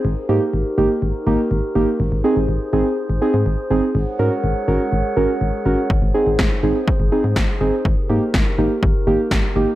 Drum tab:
SD |--------|--------|--------|--o---o-|
BD |--------|--------|--------|o-o-o-o-|

SD |--o---o-|
BD |o-o-o-o-|